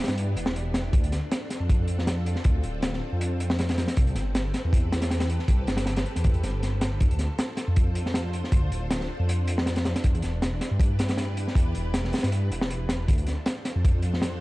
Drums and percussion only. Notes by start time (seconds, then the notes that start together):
0.04 snare, closed hi-hat
0.08 snare, closed hi-hat
0.18 closed hi-hat
0.37 closed hi-hat
0.46 snare
0.56 closed hi-hat
0.74 snare, closed hi-hat
0.93 kick, closed hi-hat
1.04 closed hi-hat
1.12 snare, closed hi-hat
1.31 snare, closed hi-hat
1.50 snare, closed hi-hat
1.69 kick, closed hi-hat
1.88 closed hi-hat
1.99 snare
2.07 snare, closed hi-hat
2.26 closed hi-hat
2.36 snare
2.44 kick, closed hi-hat
2.63 closed hi-hat
2.82 snare, closed hi-hat
2.93 snare
3.21 closed hi-hat
3.40 closed hi-hat
3.50 snare
3.59 snare, closed hi-hat
3.69 snare, closed hi-hat
3.78 snare, closed hi-hat
3.88 snare, closed hi-hat
3.97 kick, closed hi-hat
4.07 closed hi-hat
4.15 snare, closed hi-hat
4.35 snare, closed hi-hat
4.54 snare, closed hi-hat
4.73 kick, closed hi-hat
4.92 snare, closed hi-hat
5.02 snare, closed hi-hat
5.11 snare, closed hi-hat
5.20 snare, closed hi-hat
5.30 closed hi-hat
5.39 snare
5.48 kick, closed hi-hat
5.67 snare, closed hi-hat
5.77 snare, closed hi-hat
5.86 snare, closed hi-hat
5.96 snare, closed hi-hat
6.06 closed hi-hat
6.16 snare, closed hi-hat
6.24 kick, closed hi-hat
6.34 closed hi-hat
6.43 snare, closed hi-hat
6.63 snare, closed hi-hat
6.81 snare, closed hi-hat
7.00 kick, closed hi-hat
7.11 closed hi-hat
7.19 snare, closed hi-hat
7.39 snare, closed hi-hat
7.57 snare, closed hi-hat
7.76 kick, closed hi-hat
7.95 closed hi-hat
8.06 snare
8.14 snare, closed hi-hat
8.33 closed hi-hat
8.44 snare
8.52 kick, closed hi-hat
8.72 closed hi-hat
8.91 snare, closed hi-hat
9.00 snare
9.29 closed hi-hat
9.48 closed hi-hat
9.58 snare
9.66 snare, closed hi-hat
9.76 snare, closed hi-hat
9.85 snare, closed hi-hat
9.96 snare, closed hi-hat
10.04 kick, closed hi-hat
10.15 closed hi-hat
10.22 snare, closed hi-hat
10.42 snare, closed hi-hat
10.61 snare, closed hi-hat
10.80 kick, closed hi-hat
10.99 snare, closed hi-hat
11.09 snare, closed hi-hat
11.18 snare, closed hi-hat
11.37 closed hi-hat
11.48 snare
11.55 kick, closed hi-hat
11.75 closed hi-hat
11.94 snare, closed hi-hat
12.04 snare
12.13 snare, closed hi-hat
12.18 snare, closed hi-hat
12.23 snare, closed hi-hat
12.32 closed hi-hat
12.52 closed hi-hat
12.61 snare
12.70 closed hi-hat
12.89 snare, closed hi-hat
13.08 kick, closed hi-hat
13.18 closed hi-hat
13.27 snare, closed hi-hat
13.46 snare, closed hi-hat
13.65 snare, closed hi-hat
13.85 kick, closed hi-hat
14.02 closed hi-hat
14.13 snare
14.22 snare, closed hi-hat